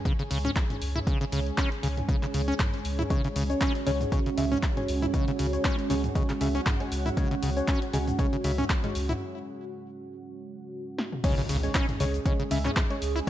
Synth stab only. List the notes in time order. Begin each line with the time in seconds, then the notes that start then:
3.10 G#3 C#4 C#5
3.50 G#3 C#4 C#5
3.86 G#3 C#4 C#5
4.12 G#3 C#4 C#5
4.37 G#3 C#4 E5
4.77 G#3 C#4 C#5
5.14 G#3 C#4 C#5
5.53 G#3 C#4 C#5
5.90 G#3 C#4 C#5
6.15 G#3 C#4 C#5
6.41 G#3 C#4 E5
6.80 G#3 C#4 C#5
7.17 G#3 C#4 C#5
7.57 G#3 C#4 C#5
7.93 G#3 C#4 C#5
8.19 G#3 C#4 C#5
8.44 G#3 C#4 E5
8.84 G#3 C#4 C#5
11.24 G#3 C#4 C#5
11.63 G#3 C#4 C#5
12.00 G#3 C#4 C#5
12.26 G#3 C#4 C#5
12.51 G#3 C#4 E5
12.90 G#3 C#4 C#5